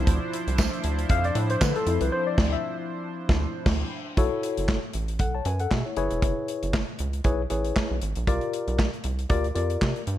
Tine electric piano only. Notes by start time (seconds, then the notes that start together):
Already playing: F3 C4 E4
1.11 F5
1.25 D5
1.51 C5
1.61 B4
1.76 A4
1.86 F3 C4 E4
2.01 B4
2.12 C5
2.27 D5
2.53 E5
4.17 E4 F#4 A4 C#5
5.20 A4 F#5
5.35 C#5 A5
5.46 B4 G#5
5.60 A4 F#5
5.71 G#4 E5
5.86 E4 C#5
5.97 E4 G#4 B4 C#5
7.24 E4 G#4 B4 C#5
7.50 E4 G#4 B4 C#5
8.27 F4 G4 A#4 D5
9.29 F4 G4 A#4 D5
9.55 F4 G4 A#4 D5